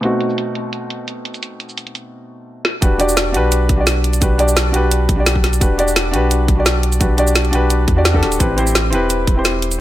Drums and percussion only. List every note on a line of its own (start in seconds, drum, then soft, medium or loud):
0.03 closed hi-hat medium
0.03 cabasa soft
0.21 closed hi-hat medium
0.21 cabasa soft
0.30 cabasa medium
0.38 closed hi-hat medium
0.38 cabasa soft
0.55 closed hi-hat medium
0.73 closed hi-hat medium
0.73 cabasa soft
0.90 closed hi-hat medium
1.08 closed hi-hat medium
1.08 cabasa soft
1.25 closed hi-hat medium
1.34 closed hi-hat soft
1.34 cabasa medium
1.43 closed hi-hat medium
1.43 cabasa soft
1.60 closed hi-hat medium
1.60 cabasa soft
1.69 cabasa medium
1.78 closed hi-hat medium
1.78 cabasa soft
1.87 closed hi-hat soft
1.95 closed hi-hat medium
1.95 cabasa soft
2.65 snare medium
2.82 kick loud
2.82 closed hi-hat medium
2.82 cabasa soft
3.00 closed hi-hat medium
3.00 cabasa soft
3.09 cabasa medium
3.17 snare loud
3.17 closed hi-hat medium
3.17 cabasa medium
3.34 closed hi-hat medium
3.52 closed hi-hat medium
3.52 cabasa soft
3.69 kick loud
3.69 closed hi-hat medium
3.87 snare loud
3.87 closed hi-hat medium
3.87 cabasa soft
4.04 closed hi-hat medium
4.13 closed hi-hat soft
4.13 cabasa medium
4.22 kick loud
4.22 closed hi-hat medium
4.22 cabasa medium
4.39 closed hi-hat medium
4.39 cabasa soft
4.48 cabasa medium
4.57 snare loud
4.57 closed hi-hat loud
4.57 cabasa medium
4.74 closed hi-hat medium
4.91 closed hi-hat loud
4.91 cabasa soft
5.09 kick loud
5.09 closed hi-hat medium
5.26 snare loud
5.26 closed hi-hat loud
5.26 cabasa soft
5.36 kick medium
5.44 snare soft
5.44 closed hi-hat medium
5.53 closed hi-hat soft
5.53 cabasa medium
5.61 kick loud
5.61 closed hi-hat medium
5.61 cabasa soft
5.79 closed hi-hat medium
5.79 cabasa soft
5.88 cabasa medium
5.96 snare loud
5.96 closed hi-hat medium
5.96 cabasa soft
6.14 closed hi-hat medium
6.31 closed hi-hat medium
6.31 cabasa soft
6.48 kick loud
6.48 closed hi-hat medium
6.66 snare loud
6.66 closed hi-hat medium
6.66 cabasa soft
6.83 closed hi-hat medium
6.92 closed hi-hat soft
6.92 cabasa medium
7.01 kick loud
7.01 closed hi-hat medium
7.01 cabasa soft
7.18 closed hi-hat medium
7.18 cabasa soft
7.27 cabasa medium
7.36 snare loud
7.36 closed hi-hat medium
7.36 cabasa soft
7.45 closed hi-hat soft
7.53 closed hi-hat medium
7.70 closed hi-hat medium
7.70 cabasa soft
7.88 kick loud
7.88 closed hi-hat medium
8.05 snare loud
8.05 closed hi-hat medium
8.05 cabasa soft
8.14 kick medium
8.23 snare soft
8.23 closed hi-hat medium
8.32 closed hi-hat soft
8.32 cabasa medium
8.40 kick loud
8.40 closed hi-hat medium
8.40 cabasa soft
8.58 closed hi-hat medium
8.58 cabasa soft
8.67 cabasa medium
8.75 snare loud
8.75 closed hi-hat medium
8.75 cabasa soft
8.93 closed hi-hat medium
9.10 closed hi-hat medium
9.10 cabasa soft
9.27 kick loud
9.27 closed hi-hat medium
9.45 snare loud
9.45 closed hi-hat medium
9.45 cabasa soft
9.62 closed hi-hat medium
9.71 closed hi-hat soft
9.71 cabasa medium